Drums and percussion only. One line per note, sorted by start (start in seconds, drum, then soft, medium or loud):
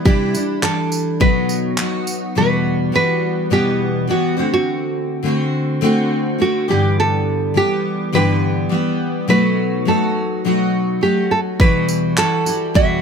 0.06 kick loud
0.35 tambourine medium
0.63 clap loud
0.92 tambourine medium
1.21 kick loud
1.49 tambourine medium
1.78 clap loud
2.07 tambourine medium
11.60 kick loud
11.89 tambourine medium
12.17 clap loud
12.46 tambourine medium
12.75 kick loud